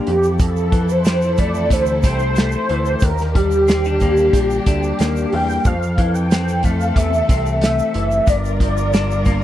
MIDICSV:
0, 0, Header, 1, 6, 480
1, 0, Start_track
1, 0, Key_signature, -1, "major"
1, 0, Tempo, 656455
1, 290, Time_signature, 4, 2, 24, 8
1, 6900, End_track
2, 0, Start_track
2, 0, Title_t, "Soft synth lead"
2, 0, Program_c, 0, 80
2, 60, Note_on_c, 0, 67, 98
2, 297, Note_on_c, 0, 69, 99
2, 308, Note_off_c, 0, 67, 0
2, 666, Note_on_c, 0, 72, 99
2, 677, Note_off_c, 0, 69, 0
2, 1016, Note_on_c, 0, 74, 95
2, 1027, Note_off_c, 0, 72, 0
2, 1261, Note_on_c, 0, 72, 98
2, 1272, Note_off_c, 0, 74, 0
2, 1497, Note_off_c, 0, 72, 0
2, 1506, Note_on_c, 0, 72, 107
2, 2222, Note_on_c, 0, 70, 103
2, 2233, Note_off_c, 0, 72, 0
2, 2456, Note_on_c, 0, 67, 104
2, 2467, Note_off_c, 0, 70, 0
2, 3901, Note_on_c, 0, 79, 123
2, 3912, Note_off_c, 0, 67, 0
2, 4136, Note_off_c, 0, 79, 0
2, 4139, Note_on_c, 0, 77, 107
2, 4489, Note_on_c, 0, 79, 106
2, 4500, Note_off_c, 0, 77, 0
2, 4855, Note_on_c, 0, 77, 101
2, 4866, Note_off_c, 0, 79, 0
2, 5091, Note_on_c, 0, 76, 120
2, 5102, Note_off_c, 0, 77, 0
2, 5570, Note_off_c, 0, 76, 0
2, 5578, Note_on_c, 0, 76, 108
2, 6060, Note_on_c, 0, 74, 98
2, 6071, Note_off_c, 0, 76, 0
2, 6900, Note_off_c, 0, 74, 0
2, 6900, End_track
3, 0, Start_track
3, 0, Title_t, "String section"
3, 0, Program_c, 1, 48
3, 49, Note_on_c, 1, 52, 70
3, 51, Note_on_c, 1, 64, 68
3, 54, Note_on_c, 1, 69, 83
3, 2191, Note_off_c, 1, 52, 0
3, 2191, Note_off_c, 1, 64, 0
3, 2193, Note_off_c, 1, 69, 0
3, 2207, Note_on_c, 1, 50, 74
3, 2207, Note_on_c, 1, 62, 71
3, 2207, Note_on_c, 1, 67, 89
3, 4110, Note_off_c, 1, 50, 0
3, 4110, Note_off_c, 1, 62, 0
3, 4110, Note_off_c, 1, 67, 0
3, 4134, Note_on_c, 1, 60, 71
3, 4137, Note_on_c, 1, 69, 86
3, 4141, Note_on_c, 1, 52, 79
3, 6032, Note_off_c, 1, 60, 0
3, 6033, Note_off_c, 1, 69, 0
3, 6035, Note_off_c, 1, 52, 0
3, 6052, Note_on_c, 1, 55, 74
3, 6052, Note_on_c, 1, 70, 85
3, 6053, Note_on_c, 1, 65, 68
3, 6900, Note_off_c, 1, 55, 0
3, 6900, Note_off_c, 1, 65, 0
3, 6900, Note_off_c, 1, 70, 0
3, 6900, End_track
4, 0, Start_track
4, 0, Title_t, "Clean electric guitar"
4, 0, Program_c, 2, 27
4, 0, Note_on_c, 2, 50, 63
4, 0, Note_on_c, 2, 53, 55
4, 0, Note_on_c, 2, 58, 67
4, 0, Note_on_c, 2, 62, 59
4, 54, Note_on_c, 2, 41, 82
4, 98, Note_off_c, 2, 62, 0
4, 99, Note_off_c, 2, 50, 0
4, 100, Note_off_c, 2, 58, 0
4, 282, Note_off_c, 2, 41, 0
4, 291, Note_on_c, 2, 41, 84
4, 524, Note_off_c, 2, 53, 0
4, 527, Note_on_c, 2, 52, 63
4, 770, Note_on_c, 2, 60, 62
4, 1015, Note_on_c, 2, 57, 59
4, 1258, Note_on_c, 2, 48, 71
4, 1489, Note_off_c, 2, 60, 0
4, 1497, Note_on_c, 2, 60, 60
4, 1732, Note_off_c, 2, 57, 0
4, 1740, Note_on_c, 2, 57, 70
4, 1970, Note_off_c, 2, 52, 0
4, 1978, Note_on_c, 2, 52, 63
4, 2213, Note_off_c, 2, 41, 0
4, 2216, Note_off_c, 2, 48, 0
4, 2263, Note_off_c, 2, 52, 0
4, 2263, Note_off_c, 2, 60, 0
4, 2265, Note_off_c, 2, 57, 0
4, 2454, Note_on_c, 2, 55, 64
4, 2693, Note_on_c, 2, 60, 66
4, 2822, Note_off_c, 2, 60, 0
4, 2822, Note_on_c, 2, 62, 62
4, 2937, Note_on_c, 2, 58, 66
4, 3167, Note_off_c, 2, 55, 0
4, 3175, Note_on_c, 2, 55, 63
4, 3405, Note_off_c, 2, 62, 0
4, 3414, Note_on_c, 2, 62, 63
4, 3648, Note_off_c, 2, 58, 0
4, 3657, Note_on_c, 2, 58, 60
4, 3891, Note_off_c, 2, 55, 0
4, 3900, Note_on_c, 2, 55, 57
4, 4181, Note_off_c, 2, 62, 0
4, 4182, Note_off_c, 2, 58, 0
4, 4184, Note_off_c, 2, 55, 0
4, 4378, Note_on_c, 2, 52, 64
4, 4624, Note_on_c, 2, 60, 58
4, 4861, Note_on_c, 2, 57, 63
4, 5098, Note_on_c, 2, 48, 72
4, 5329, Note_off_c, 2, 60, 0
4, 5337, Note_on_c, 2, 60, 65
4, 5562, Note_off_c, 2, 57, 0
4, 5571, Note_on_c, 2, 57, 68
4, 5803, Note_off_c, 2, 52, 0
4, 5812, Note_on_c, 2, 52, 60
4, 6046, Note_on_c, 2, 43, 88
4, 6098, Note_off_c, 2, 57, 0
4, 6099, Note_off_c, 2, 52, 0
4, 6101, Note_off_c, 2, 48, 0
4, 6101, Note_off_c, 2, 60, 0
4, 6289, Note_on_c, 2, 53, 56
4, 6534, Note_on_c, 2, 62, 69
4, 6769, Note_on_c, 2, 58, 62
4, 6900, Note_off_c, 2, 43, 0
4, 6900, Note_off_c, 2, 53, 0
4, 6900, Note_off_c, 2, 58, 0
4, 6900, Note_off_c, 2, 62, 0
4, 6900, End_track
5, 0, Start_track
5, 0, Title_t, "Analog synth bass"
5, 0, Program_c, 3, 38
5, 55, Note_on_c, 3, 41, 98
5, 1246, Note_on_c, 3, 38, 94
5, 1257, Note_off_c, 3, 41, 0
5, 1489, Note_on_c, 3, 36, 105
5, 1500, Note_off_c, 3, 38, 0
5, 1874, Note_off_c, 3, 36, 0
5, 1973, Note_on_c, 3, 38, 81
5, 2165, Note_off_c, 3, 38, 0
5, 2210, Note_on_c, 3, 39, 115
5, 3142, Note_off_c, 3, 39, 0
5, 3168, Note_on_c, 3, 34, 90
5, 3362, Note_off_c, 3, 34, 0
5, 3412, Note_on_c, 3, 38, 93
5, 3604, Note_off_c, 3, 38, 0
5, 3655, Note_on_c, 3, 39, 100
5, 3846, Note_off_c, 3, 39, 0
5, 3897, Note_on_c, 3, 40, 105
5, 4087, Note_off_c, 3, 40, 0
5, 4133, Note_on_c, 3, 41, 124
5, 5062, Note_off_c, 3, 41, 0
5, 5090, Note_on_c, 3, 40, 99
5, 5282, Note_off_c, 3, 40, 0
5, 5330, Note_on_c, 3, 36, 99
5, 5714, Note_off_c, 3, 36, 0
5, 5813, Note_on_c, 3, 30, 97
5, 6003, Note_off_c, 3, 30, 0
5, 6052, Note_on_c, 3, 31, 123
5, 6900, Note_off_c, 3, 31, 0
5, 6900, End_track
6, 0, Start_track
6, 0, Title_t, "Drums"
6, 50, Note_on_c, 9, 42, 70
6, 123, Note_off_c, 9, 42, 0
6, 171, Note_on_c, 9, 82, 46
6, 244, Note_off_c, 9, 82, 0
6, 287, Note_on_c, 9, 82, 64
6, 289, Note_on_c, 9, 36, 119
6, 291, Note_on_c, 9, 42, 78
6, 360, Note_off_c, 9, 82, 0
6, 362, Note_off_c, 9, 36, 0
6, 364, Note_off_c, 9, 42, 0
6, 413, Note_on_c, 9, 82, 40
6, 486, Note_off_c, 9, 82, 0
6, 529, Note_on_c, 9, 36, 98
6, 529, Note_on_c, 9, 42, 61
6, 602, Note_off_c, 9, 36, 0
6, 602, Note_off_c, 9, 42, 0
6, 651, Note_on_c, 9, 82, 54
6, 724, Note_off_c, 9, 82, 0
6, 766, Note_on_c, 9, 82, 67
6, 773, Note_on_c, 9, 42, 89
6, 780, Note_on_c, 9, 38, 113
6, 839, Note_off_c, 9, 82, 0
6, 846, Note_off_c, 9, 42, 0
6, 853, Note_off_c, 9, 38, 0
6, 891, Note_on_c, 9, 82, 42
6, 965, Note_off_c, 9, 82, 0
6, 1005, Note_on_c, 9, 82, 45
6, 1006, Note_on_c, 9, 42, 68
6, 1013, Note_on_c, 9, 36, 83
6, 1078, Note_off_c, 9, 82, 0
6, 1079, Note_off_c, 9, 42, 0
6, 1086, Note_off_c, 9, 36, 0
6, 1130, Note_on_c, 9, 82, 47
6, 1203, Note_off_c, 9, 82, 0
6, 1246, Note_on_c, 9, 36, 94
6, 1250, Note_on_c, 9, 82, 60
6, 1252, Note_on_c, 9, 42, 96
6, 1319, Note_off_c, 9, 36, 0
6, 1323, Note_off_c, 9, 82, 0
6, 1325, Note_off_c, 9, 42, 0
6, 1360, Note_on_c, 9, 82, 54
6, 1433, Note_off_c, 9, 82, 0
6, 1484, Note_on_c, 9, 82, 48
6, 1489, Note_on_c, 9, 36, 107
6, 1491, Note_on_c, 9, 42, 95
6, 1557, Note_off_c, 9, 82, 0
6, 1562, Note_off_c, 9, 36, 0
6, 1565, Note_off_c, 9, 42, 0
6, 1603, Note_on_c, 9, 82, 39
6, 1676, Note_off_c, 9, 82, 0
6, 1726, Note_on_c, 9, 42, 85
6, 1726, Note_on_c, 9, 82, 61
6, 1742, Note_on_c, 9, 38, 104
6, 1799, Note_off_c, 9, 42, 0
6, 1799, Note_off_c, 9, 82, 0
6, 1815, Note_off_c, 9, 38, 0
6, 1839, Note_on_c, 9, 82, 55
6, 1912, Note_off_c, 9, 82, 0
6, 1970, Note_on_c, 9, 42, 76
6, 2043, Note_off_c, 9, 42, 0
6, 2086, Note_on_c, 9, 82, 45
6, 2159, Note_off_c, 9, 82, 0
6, 2194, Note_on_c, 9, 82, 64
6, 2210, Note_on_c, 9, 36, 117
6, 2210, Note_on_c, 9, 42, 84
6, 2267, Note_off_c, 9, 82, 0
6, 2283, Note_off_c, 9, 36, 0
6, 2283, Note_off_c, 9, 42, 0
6, 2325, Note_on_c, 9, 82, 39
6, 2343, Note_on_c, 9, 38, 33
6, 2398, Note_off_c, 9, 82, 0
6, 2416, Note_off_c, 9, 38, 0
6, 2452, Note_on_c, 9, 36, 92
6, 2454, Note_on_c, 9, 42, 62
6, 2525, Note_off_c, 9, 36, 0
6, 2528, Note_off_c, 9, 42, 0
6, 2569, Note_on_c, 9, 82, 58
6, 2642, Note_off_c, 9, 82, 0
6, 2690, Note_on_c, 9, 82, 66
6, 2696, Note_on_c, 9, 42, 92
6, 2702, Note_on_c, 9, 38, 112
6, 2763, Note_off_c, 9, 82, 0
6, 2769, Note_off_c, 9, 42, 0
6, 2776, Note_off_c, 9, 38, 0
6, 2813, Note_on_c, 9, 82, 42
6, 2886, Note_off_c, 9, 82, 0
6, 2926, Note_on_c, 9, 42, 66
6, 2928, Note_on_c, 9, 82, 50
6, 2935, Note_on_c, 9, 36, 80
6, 2999, Note_off_c, 9, 42, 0
6, 3001, Note_off_c, 9, 82, 0
6, 3008, Note_off_c, 9, 36, 0
6, 3050, Note_on_c, 9, 82, 47
6, 3123, Note_off_c, 9, 82, 0
6, 3168, Note_on_c, 9, 36, 84
6, 3171, Note_on_c, 9, 42, 84
6, 3180, Note_on_c, 9, 82, 66
6, 3241, Note_off_c, 9, 36, 0
6, 3244, Note_off_c, 9, 42, 0
6, 3253, Note_off_c, 9, 82, 0
6, 3293, Note_on_c, 9, 82, 53
6, 3366, Note_off_c, 9, 82, 0
6, 3410, Note_on_c, 9, 42, 97
6, 3411, Note_on_c, 9, 36, 101
6, 3418, Note_on_c, 9, 82, 48
6, 3483, Note_off_c, 9, 42, 0
6, 3485, Note_off_c, 9, 36, 0
6, 3491, Note_off_c, 9, 82, 0
6, 3535, Note_on_c, 9, 82, 40
6, 3608, Note_off_c, 9, 82, 0
6, 3647, Note_on_c, 9, 42, 86
6, 3660, Note_on_c, 9, 82, 60
6, 3663, Note_on_c, 9, 38, 91
6, 3720, Note_off_c, 9, 42, 0
6, 3733, Note_off_c, 9, 82, 0
6, 3736, Note_off_c, 9, 38, 0
6, 3776, Note_on_c, 9, 82, 51
6, 3849, Note_off_c, 9, 82, 0
6, 3893, Note_on_c, 9, 46, 53
6, 3966, Note_off_c, 9, 46, 0
6, 4017, Note_on_c, 9, 82, 43
6, 4090, Note_off_c, 9, 82, 0
6, 4129, Note_on_c, 9, 82, 64
6, 4131, Note_on_c, 9, 42, 81
6, 4133, Note_on_c, 9, 36, 100
6, 4203, Note_off_c, 9, 82, 0
6, 4205, Note_off_c, 9, 42, 0
6, 4206, Note_off_c, 9, 36, 0
6, 4262, Note_on_c, 9, 82, 41
6, 4335, Note_off_c, 9, 82, 0
6, 4372, Note_on_c, 9, 36, 87
6, 4373, Note_on_c, 9, 42, 58
6, 4445, Note_off_c, 9, 36, 0
6, 4446, Note_off_c, 9, 42, 0
6, 4496, Note_on_c, 9, 82, 58
6, 4569, Note_off_c, 9, 82, 0
6, 4616, Note_on_c, 9, 42, 92
6, 4616, Note_on_c, 9, 82, 67
6, 4622, Note_on_c, 9, 38, 108
6, 4689, Note_off_c, 9, 42, 0
6, 4689, Note_off_c, 9, 82, 0
6, 4695, Note_off_c, 9, 38, 0
6, 4742, Note_on_c, 9, 82, 44
6, 4815, Note_off_c, 9, 82, 0
6, 4846, Note_on_c, 9, 42, 63
6, 4855, Note_on_c, 9, 36, 87
6, 4857, Note_on_c, 9, 82, 49
6, 4920, Note_off_c, 9, 42, 0
6, 4928, Note_off_c, 9, 36, 0
6, 4930, Note_off_c, 9, 82, 0
6, 4978, Note_on_c, 9, 82, 44
6, 5051, Note_off_c, 9, 82, 0
6, 5089, Note_on_c, 9, 36, 90
6, 5092, Note_on_c, 9, 42, 80
6, 5106, Note_on_c, 9, 82, 61
6, 5162, Note_off_c, 9, 36, 0
6, 5165, Note_off_c, 9, 42, 0
6, 5179, Note_off_c, 9, 82, 0
6, 5218, Note_on_c, 9, 82, 51
6, 5291, Note_off_c, 9, 82, 0
6, 5331, Note_on_c, 9, 36, 98
6, 5333, Note_on_c, 9, 42, 97
6, 5339, Note_on_c, 9, 82, 48
6, 5404, Note_off_c, 9, 36, 0
6, 5406, Note_off_c, 9, 42, 0
6, 5413, Note_off_c, 9, 82, 0
6, 5457, Note_on_c, 9, 82, 41
6, 5530, Note_off_c, 9, 82, 0
6, 5568, Note_on_c, 9, 42, 81
6, 5582, Note_on_c, 9, 82, 67
6, 5584, Note_on_c, 9, 38, 95
6, 5641, Note_off_c, 9, 42, 0
6, 5656, Note_off_c, 9, 82, 0
6, 5657, Note_off_c, 9, 38, 0
6, 5696, Note_on_c, 9, 82, 52
6, 5769, Note_off_c, 9, 82, 0
6, 5807, Note_on_c, 9, 42, 78
6, 5881, Note_off_c, 9, 42, 0
6, 5931, Note_on_c, 9, 82, 47
6, 6004, Note_off_c, 9, 82, 0
6, 6049, Note_on_c, 9, 82, 59
6, 6050, Note_on_c, 9, 36, 113
6, 6051, Note_on_c, 9, 42, 82
6, 6122, Note_off_c, 9, 82, 0
6, 6123, Note_off_c, 9, 36, 0
6, 6124, Note_off_c, 9, 42, 0
6, 6177, Note_on_c, 9, 82, 45
6, 6250, Note_off_c, 9, 82, 0
6, 6290, Note_on_c, 9, 36, 83
6, 6294, Note_on_c, 9, 42, 61
6, 6363, Note_off_c, 9, 36, 0
6, 6367, Note_off_c, 9, 42, 0
6, 6416, Note_on_c, 9, 82, 55
6, 6489, Note_off_c, 9, 82, 0
6, 6532, Note_on_c, 9, 82, 65
6, 6534, Note_on_c, 9, 42, 84
6, 6541, Note_on_c, 9, 38, 115
6, 6605, Note_off_c, 9, 82, 0
6, 6607, Note_off_c, 9, 42, 0
6, 6614, Note_off_c, 9, 38, 0
6, 6661, Note_on_c, 9, 82, 42
6, 6734, Note_off_c, 9, 82, 0
6, 6766, Note_on_c, 9, 42, 61
6, 6767, Note_on_c, 9, 82, 51
6, 6771, Note_on_c, 9, 36, 88
6, 6840, Note_off_c, 9, 42, 0
6, 6840, Note_off_c, 9, 82, 0
6, 6844, Note_off_c, 9, 36, 0
6, 6900, End_track
0, 0, End_of_file